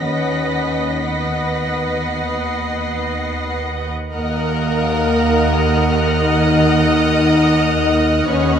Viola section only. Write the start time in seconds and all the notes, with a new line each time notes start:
0.01 B4 D#5
1.04 B4 D#5
4.14 A#4 D#5
8.29 B4 D#5